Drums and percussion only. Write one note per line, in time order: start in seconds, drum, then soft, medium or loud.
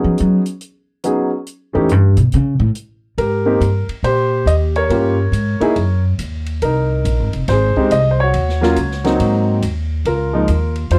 0.18 closed hi-hat medium
0.46 closed hi-hat medium
0.61 closed hi-hat soft
1.04 closed hi-hat medium
1.46 closed hi-hat soft
1.89 closed hi-hat soft
2.17 closed hi-hat soft
2.32 closed hi-hat soft
2.75 closed hi-hat medium
3.18 ride medium
3.61 hi-hat pedal soft
3.61 ride soft
3.89 ride soft
4.04 ride medium
4.47 hi-hat pedal medium
4.47 ride medium
4.75 ride soft
4.90 ride medium
5.33 hi-hat pedal medium
5.33 ride medium
5.61 ride soft
5.76 ride medium
6.19 hi-hat pedal medium
6.19 ride medium
6.46 ride soft
6.62 ride medium
7.05 hi-hat pedal medium
7.05 ride medium
7.33 ride soft
7.48 snare soft
7.48 ride medium
7.76 kick soft
7.91 hi-hat pedal medium
7.91 ride medium
8.34 ride medium
8.49 snare soft
8.63 snare soft
8.76 hi-hat pedal medium
8.76 ride medium
8.91 snare soft
9.04 snare soft
9.04 ride soft
9.20 ride medium
9.62 hi-hat pedal medium
9.62 ride medium
10.05 ride medium
10.48 hi-hat pedal medium
10.48 ride medium
10.75 ride soft
10.91 ride medium